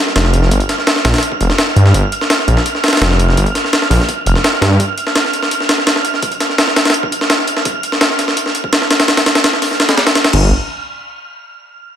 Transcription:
Already playing: synth texture F6
0.07 snare
0.16 detuned saw bass F1, snare, closed hi-hat
0.25 snare
0.34 closed hi-hat
0.43 snare
0.51 detuned saw bass G1, kick, closed hi-hat
0.60 closed hi-hat
0.69 snare, closed hi-hat
0.78 snare
0.87 snare, closed hi-hat
0.96 snare
1.05 detuned saw bass A#1, snare, closed hi-hat
1.14 snare, closed hi-hat
1.18 snare, closed hi-hat
1.23 closed hi-hat
1.32 kick
1.40 detuned saw bass F1, closed hi-hat
1.50 snare
1.58 snare, closed hi-hat
1.68 snare
1.76 detuned saw bass G2, closed hi-hat
1.86 snare
1.94 detuned saw bass G1, kick, closed hi-hat
2.12 closed hi-hat
2.21 snare
2.30 snare, closed hi-hat
2.39 snare
2.48 detuned saw bass A#1, closed hi-hat
2.57 snare
2.66 closed hi-hat
2.75 snare
2.84 snare, closed hi-hat
2.88 snare, closed hi-hat
2.93 snare, closed hi-hat
2.97 detuned saw bass F1, snare, closed hi-hat
3.02 snare, closed hi-hat
3.11 snare
3.19 closed hi-hat
3.29 snare
3.37 detuned saw bass G1, kick, closed hi-hat
3.46 closed hi-hat
3.55 snare, closed hi-hat
3.64 snare
3.73 snare, closed hi-hat
3.82 snare
3.90 detuned saw bass A#1, snare, open hi-hat
4.00 snare
4.09 kick, closed hi-hat
4.26 detuned saw bass F1, closed hi-hat
4.35 snare
4.44 snare, closed hi-hat
4.53 snare
4.61 detuned saw bass G2, snare, closed hi-hat
4.71 snare
4.80 kick, closed hi-hat
4.98 closed hi-hat
5.07 snare
5.15 snare, closed hi-hat
5.25 snare
5.33 closed hi-hat
5.43 snare
5.51 closed hi-hat
5.60 snare
5.69 snare, closed hi-hat
5.78 snare
5.87 snare, closed hi-hat
5.96 snare
6.05 closed hi-hat
6.14 snare
6.23 kick, closed hi-hat
6.32 closed hi-hat
6.40 snare, closed hi-hat
6.50 snare
6.58 snare, closed hi-hat
6.68 snare
6.76 snare, closed hi-hat
6.85 snare, closed hi-hat
6.90 snare, closed hi-hat
6.94 closed hi-hat
7.03 kick
7.12 closed hi-hat
7.21 snare
7.30 snare, closed hi-hat
7.39 snare
7.48 closed hi-hat
7.57 snare
7.65 kick, closed hi-hat
7.83 closed hi-hat
7.92 snare
8.01 snare, closed hi-hat
8.10 snare
8.19 snare, closed hi-hat
8.28 snare
8.37 closed hi-hat
8.46 snare
8.55 closed hi-hat
8.64 kick
8.73 snare, closed hi-hat
8.82 snare
8.91 snare, closed hi-hat
9.00 snare, closed hi-hat
9.08 snare, closed hi-hat
9.17 snare, closed hi-hat
9.26 snare, closed hi-hat
9.35 snare, closed hi-hat
9.44 snare, closed hi-hat
9.53 snare
9.62 snare, open hi-hat
9.71 snare
9.80 snare, closed hi-hat
9.89 snare, closed hi-hat
9.97 snare, closed hi-hat
10.07 snare, closed hi-hat
10.15 snare, closed hi-hat
10.24 snare, closed hi-hat
10.33 detuned saw bass G1, kick, crash

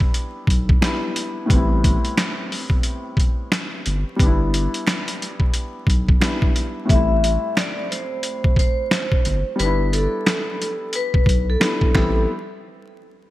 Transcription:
Already playing: upright piano G3 B3 D4 E4
0.00 kick
0.14 closed hi-hat
0.47 sub bass B1, kick, closed hi-hat
0.69 kick
0.81 upright piano G3 B3 D4, finger snap, snare, closed hi-hat
0.86 upright piano E4
1.16 closed hi-hat
1.46 upright piano A2 G3
1.50 sub bass A1, upright piano B3 C4, kick, closed hi-hat
1.55 upright piano E4
1.84 kick, closed hi-hat
2.05 closed hi-hat
2.17 finger snap, snare, closed hi-hat
2.52 open hi-hat
2.70 kick
2.83 closed hi-hat
3.17 kick, closed hi-hat
3.52 finger snap, snare, closed hi-hat
3.86 sub bass G1, closed hi-hat
4.16 sub bass G1, upright piano G3 B3, kick, closed hi-hat
4.23 upright piano D4 E4
4.54 closed hi-hat
4.74 closed hi-hat
4.87 finger snap, snare, closed hi-hat
5.08 closed hi-hat
5.22 closed hi-hat
5.40 kick
5.54 closed hi-hat
5.87 sub bass B1, kick, closed hi-hat
6.09 kick
6.20 upright piano G3 B3 D4, finger snap, snare, closed hi-hat
6.25 upright piano E4
6.42 kick
6.56 closed hi-hat
6.85 upright piano A2 G3
6.89 sub bass A1, upright piano A3 C4, vibraphone E5, kick, closed hi-hat
6.95 upright piano E4
7.24 closed hi-hat
7.57 vibraphone D5, finger snap, snare, closed hi-hat
7.91 vibraphone C5, closed hi-hat
8.23 closed hi-hat
8.44 kick
8.56 vibraphone C5, kick, closed hi-hat
8.91 finger snap, snare, closed hi-hat
9.12 kick
9.25 sub bass G1, closed hi-hat
9.56 sub bass G1, upright piano G3 B3, vibraphone B4, closed hi-hat
9.62 upright piano D4 E4
9.93 vibraphone A4, closed hi-hat
10.26 finger snap, snare, closed hi-hat
10.62 closed hi-hat
10.93 vibraphone B4, closed hi-hat
11.14 kick
11.26 sub bass B1, kick, closed hi-hat
11.50 vibraphone A4
11.60 upright piano G3 B3 D4, finger snap, snare, closed hi-hat
11.65 upright piano E4
11.81 kick
11.95 sub bass A1, upright piano G3 B3 C4 E4, vibraphone A4, finger snap, kick, snare

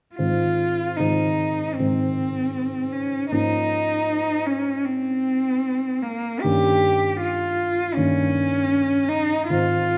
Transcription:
0.15 grand piano G#2 D#3 G#3 C4, cello F4
0.97 grand piano G#2 D#3 G#3 C4, cello D#4
1.75 cello C4
1.79 grand piano G#2 D#3 G#3 C4
2.92 cello C#4
3.31 grand piano G#2 F3 A#3 C#4, cello D#4
4.46 cello C#4
4.85 cello C4
6.02 cello A#3
6.41 grand piano G2 D#3 A#3 C#4, cello G4
7.20 cello F4
7.95 grand piano G2 D#3 A#3 C#4, cello C#4
9.09 cello D#4
9.47 grand piano G#2 D#3 C4, cello F4

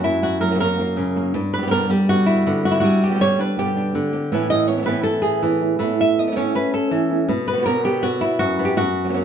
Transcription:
Already playing: nylon-string guitar F#2 F#4
0.03 nylon-string guitar F#3 A#3 C#4 E4 F#4
0.22 nylon-string guitar F#4, muted nylon-string guitar stroke
0.40 nylon-string guitar F#3 A#3 C#4 F#4 A#4
0.50 nylon-string guitar C#3 F#3 A#3 C#4 F#4
0.55 nylon-string guitar C#3 F#3 A#3 C#4 F#4
0.59 nylon-string guitar F#2 C#3 F#3 A#3 C#4 F#4 A#4
0.78 nylon-string guitar F#3 A#3 C#4 F#4
0.96 nylon-string guitar C#3 C#4, muted nylon-string guitar stroke
1.15 nylon-string guitar F#3 A#3 C#4 F#4
1.34 nylon-string guitar G2 D4, muted nylon-string guitar stroke
1.54 nylon-string guitar B2 B4
1.58 nylon-string guitar D3 G3 B3 G4
1.62 nylon-string guitar B2 D3 G3 B3 G4
1.66 nylon-string guitar B2 D3 G3 B3 G4
1.71 nylon-string guitar G2 B2 D3 G3 B3 G4 A#4
1.89 nylon-string guitar D3 G3 B3 G4
2.08 nylon-string guitar G2 B2 D3 G3 B3 F#4
2.26 nylon-string guitar E4
2.45 nylon-string guitar D3 G3 B3 G4
2.63 nylon-string guitar F#4, muted nylon-string guitar stroke
2.71 nylon-string guitar E4
2.80 nylon-string guitar G3 D4 F#4, muted nylon-string guitar stroke
3.04 nylon-string guitar B2 D3 G3 B3 G4
3.10 nylon-string guitar B2 D3 G3 B3 G4
3.15 nylon-string guitar B2 D3 G3 B3 G4
3.19 nylon-string guitar G2 B2 D3 G3 B3 G4 C#5
3.38 nylon-string guitar D3 G3 B3 D4 G4 B4
3.56 nylon-string guitar G2 B2 D3 G3 B3 G4
3.77 nylon-string guitar D4
3.94 nylon-string guitar D3 G3 B3 G4
4.12 nylon-string guitar G4, muted nylon-string guitar stroke
4.31 nylon-string guitar A2 E3 B3 C#4 E4 B4
4.50 nylon-string guitar D#5
4.67 nylon-string guitar E3 B3 C#4 E4 C#5
4.77 nylon-string guitar E3 B3 C#4 E4
4.82 nylon-string guitar E3 B3 C#4 E4
4.86 nylon-string guitar A2 E3 B3 C#4 E4 B4
5.03 nylon-string guitar A4, muted nylon-string guitar stroke
5.22 nylon-string guitar G#4
5.42 nylon-string guitar E3 B3 C#4 E4
5.61 nylon-string guitar B3 C#4 E4
5.79 nylon-string guitar A2 E3 A3 B3 C#4 E4 B4
6.01 nylon-string guitar E5
6.17 nylon-string guitar E3 B3 C#4 E4 D#5
6.27 nylon-string guitar E3 B3 C#4 E4
6.31 nylon-string guitar E3 B3 C#4 E4
6.35 nylon-string guitar A2 E3 B3 C#4 E4 C#5
6.54 nylon-string guitar B4, muted nylon-string guitar stroke
6.74 nylon-string guitar A4
6.91 nylon-string guitar E3 B3 C#4 E4
7.10 nylon-string guitar B3 C#4 E4
7.28 nylon-string guitar B2, muted nylon-string guitar stroke
7.48 nylon-string guitar B4
7.52 nylon-string guitar D3 B3 C#4 F#4
7.57 nylon-string guitar D3 B3 C#4 F#4
7.61 nylon-string guitar D3 B3 C#4 F#4
7.65 nylon-string guitar B2 D3 B3 C#4 F#4 A#4
7.85 nylon-string guitar B3 G4
8.02 nylon-string guitar B2 D3 B3 C#4 F#4
8.21 nylon-string guitar B3 C#4 E4 F#4
8.39 nylon-string guitar F#2 F#4, muted nylon-string guitar stroke
8.58 nylon-string guitar B3 C#4 F#4
8.65 nylon-string guitar G4
8.77 nylon-string guitar F#2 F#4, muted nylon-string guitar stroke
9.04 nylon-string guitar C#3 F#3 A#3 C#4 F#4
9.09 nylon-string guitar C#3 F#3 A#3 C#4 F#4
9.13 nylon-string guitar F#2 C#3 F#3 A#3 C#4 F#4

